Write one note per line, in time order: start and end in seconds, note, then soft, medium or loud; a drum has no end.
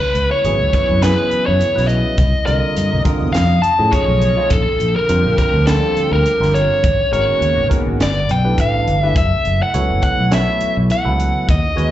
0.00 2.17 E3 medium
0.00 2.17 B3 medium
0.00 2.17 E4 medium
0.00 0.28 B4 medium
0.15 0.29 C#2 medium
0.15 closed hi-hat medium
0.31 0.73 C#5 medium
0.44 0.58 G#1 medium
0.44 0.95 C#3 medium
0.44 0.96 F#3 medium
0.44 0.96 B3 medium
0.44 0.96 E4 medium
0.44 0.96 G#4 medium
0.44 closed hi-hat medium
0.60 0.71 C#2 medium
0.73 1.03 C#5 medium
0.73 kick medium
0.73 closed hi-hat medium
0.89 1.14 F#2 medium
1.02 1.66 C#3 medium
1.02 1.67 F#3 medium
1.02 1.67 B3 medium
1.02 1.66 E4 medium
1.02 1.67 G#4 medium
1.02 1.46 B4 medium
1.02 snare loud
1.02 closed hi-hat medium
1.31 muted fingered electric bass stroke soft
1.31 closed hi-hat medium
1.46 1.59 F#2 medium
1.46 1.87 C#5 medium
1.61 muted fingered electric bass stroke soft
1.61 closed hi-hat medium
1.75 2.02 B1 medium
1.75 2.18 C#3 medium
1.75 2.18 F#3 medium
1.75 2.18 B3 medium
1.75 2.18 E4 medium
1.75 2.18 B4 medium
1.75 snare soft
1.87 2.45 D#5 medium
1.87 closed hi-hat medium
2.18 2.32 C2 loud
2.18 3.33 C3 medium
2.18 3.34 A#3 medium
2.18 4.48 D#5 medium
2.18 kick loud
2.18 closed hi-hat medium
2.45 2.61 C2 medium
2.45 2.98 D3 medium
2.45 2.98 G3 medium
2.45 2.98 C4 medium
2.45 2.98 F4 medium
2.45 2.98 A#4 medium
2.45 3.01 D#5 medium
2.45 closed hi-hat medium
2.76 2.90 G2 medium
2.76 closed hi-hat medium
2.93 3.04 C2 medium
3.04 3.34 D3 medium
3.04 3.34 G3 medium
3.04 3.34 C4 medium
3.04 3.34 F4 medium
3.04 3.34 A#4 medium
3.04 muted fingered electric bass stroke soft
3.04 kick medium
3.04 closed hi-hat medium
3.22 3.33 E2 medium
3.33 3.60 F2 medium
3.33 4.49 C#3 medium
3.33 6.79 F3 medium
3.33 3.60 F5 medium
3.33 snare loud
3.33 closed hi-hat medium
3.62 3.93 A5 medium
3.62 muted fingered electric bass stroke soft
3.62 closed hi-hat medium
3.78 3.91 A2 medium
3.78 4.29 F3 medium
3.78 4.29 A3 medium
3.78 4.29 C#4 medium
3.78 4.29 D#4 medium
3.78 4.29 G#4 medium
3.92 4.52 C#5 medium
3.92 muted fingered electric bass stroke soft
3.92 kick medium
3.92 closed hi-hat medium
4.08 4.34 B1 medium
4.22 closed hi-hat medium
4.37 4.50 F3 medium
4.37 4.50 A3 medium
4.37 4.50 C#4 medium
4.37 4.50 D#4 medium
4.37 4.50 F4 medium
4.50 4.65 A#1 medium
4.50 6.81 D3 medium
4.50 6.81 C4 medium
4.50 6.81 G4 medium
4.50 4.96 A4 loud
4.50 kick loud
4.50 closed hi-hat medium
4.80 4.94 A#1 medium
4.80 closed hi-hat medium
4.96 5.38 A#4 medium
5.09 5.23 F2 medium
5.09 5.60 D3 medium
5.09 5.60 G3 medium
5.09 5.60 C4 medium
5.09 5.61 F4 medium
5.09 5.61 A#4 medium
5.09 closed hi-hat medium
5.25 5.36 A#1 medium
5.38 5.67 A#4 medium
5.38 kick medium
5.38 closed hi-hat medium
5.54 5.79 D2 medium
5.67 6.31 D3 medium
5.67 6.31 G3 medium
5.67 6.31 A#3 medium
5.67 6.31 C4 medium
5.67 6.31 F4 medium
5.67 6.13 A4 medium
5.67 snare medium
5.67 closed hi-hat medium
5.97 muted fingered electric bass stroke soft
5.97 closed hi-hat medium
6.11 6.23 D2 medium
6.11 6.52 A#4 medium
6.25 muted fingered electric bass stroke soft
6.25 closed hi-hat medium
6.40 6.66 G1 medium
6.40 6.83 D3 medium
6.40 6.83 G3 medium
6.40 6.83 C4 medium
6.40 6.83 F4 medium
6.40 6.83 A#4 medium
6.40 snare soft
6.54 7.12 C#5 medium
6.54 closed hi-hat medium
6.81 6.98 G#1 medium
6.81 7.98 C#3 medium
6.81 7.98 A#3 medium
6.81 9.13 B3 medium
6.81 7.97 F#4 medium
6.81 kick loud
6.81 closed hi-hat medium
7.11 7.26 G#1 medium
7.11 7.64 D#3 medium
7.11 7.63 G#3 medium
7.11 7.64 C#4 medium
7.11 7.64 F#4 medium
7.11 7.64 A#4 medium
7.11 7.67 C#5 medium
7.11 closed hi-hat medium
7.41 7.55 D#2 medium
7.41 closed hi-hat medium
7.57 7.68 G#1 medium
7.69 7.99 D#3 medium
7.69 7.99 G#3 medium
7.69 7.99 C#4 medium
7.69 7.99 F#4 medium
7.69 7.99 A#4 medium
7.69 kick medium
7.69 closed hi-hat medium
7.86 7.98 G#1 medium
7.98 8.25 G1 medium
7.98 9.14 G3 medium
7.98 9.14 A4 medium
7.98 snare loud
7.98 closed hi-hat medium
8.02 8.31 D5 medium
8.29 8.55 B1 medium
8.29 8.60 G5 medium
8.29 closed hi-hat medium
8.44 8.94 E3 medium
8.44 8.95 A3 medium
8.44 8.95 D4 medium
8.44 8.95 G4 medium
8.44 8.95 B4 medium
8.58 8.84 A1 medium
8.58 9.03 F5 medium
8.58 kick medium
8.58 closed hi-hat medium
8.87 9.13 G1 medium
8.87 closed hi-hat medium
9.03 9.16 E3 medium
9.03 9.16 A3 medium
9.03 9.16 D4 medium
9.03 9.16 G4 medium
9.03 9.16 B4 medium
9.03 9.17 E5 medium
9.16 9.30 F#1 medium
9.16 11.46 E3 medium
9.16 11.46 A3 medium
9.16 9.62 E5 medium
9.16 kick loud
9.16 closed hi-hat medium
9.45 9.59 F#1 medium
9.45 closed hi-hat medium
9.63 10.02 F#5 medium
9.74 9.88 C#2 medium
9.74 10.26 F#3 medium
9.74 10.25 B3 medium
9.74 10.25 E4 medium
9.74 10.26 A4 medium
9.74 10.26 C#5 medium
9.74 closed hi-hat medium
9.90 10.02 F#1 medium
10.02 10.30 F#5 medium
10.02 kick medium
10.02 closed hi-hat medium
10.19 10.44 B1 medium
10.31 10.96 F#3 medium
10.31 10.96 B3 medium
10.31 10.96 E4 medium
10.31 10.96 A4 medium
10.31 10.96 C#5 medium
10.31 10.75 E5 medium
10.31 snare loud
10.31 closed hi-hat medium
10.61 muted fingered electric bass stroke soft
10.61 closed hi-hat medium
10.77 10.88 B1 medium
10.90 11.45 F#5 medium
10.90 muted fingered electric bass stroke soft
10.90 closed hi-hat medium
11.05 11.31 C#2 medium
11.05 11.48 F#3 medium
11.05 11.48 B3 medium
11.05 11.48 E4 medium
11.05 11.48 A4 medium
11.05 11.48 B4 medium
11.20 closed hi-hat medium
11.48 11.63 D#2 medium
11.48 11.91 D#3 medium
11.48 11.91 C#4 medium
11.48 11.91 F#4 medium
11.48 11.91 D#5 medium
11.48 kick loud
11.48 closed hi-hat medium
11.76 11.91 D#2 medium
11.76 11.91 G#3 medium
11.76 11.91 C#4 medium
11.76 11.91 F#4 medium
11.76 11.91 B4 medium
11.76 11.91 C#5 medium
11.76 closed hi-hat medium